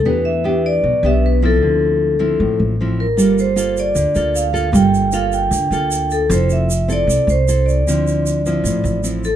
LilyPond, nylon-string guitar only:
\new Staff \with { instrumentName = "Nylon-string guitar" } { \time 4/4 \key d \minor \tempo 4 = 154 << { <b d' g'>8 r8 <b d' g'>4 r8 <b d' g'>4 <f c' e'>8~ | <f c' e'>4. <f c' e'>4. <f c' e'>8 r8 | <bes f' a'>4 <bes f' a'>4. <bes f' a'>4 <bes f' a'>8 | <bes f' a'>4 <bes f' a'>4. <bes f' a'>4. |
<c' e' a'>4 r8 <c' e' a'>4. <c' e' a'>4 | <f c' e'>4. <f c' e'>4. <f c' e'>8 r8 | } \\ { e2 b,2 | d2 a,2 | g2 d2 | g2 d2 |
f2 c2 | d2 a,2 | } >> }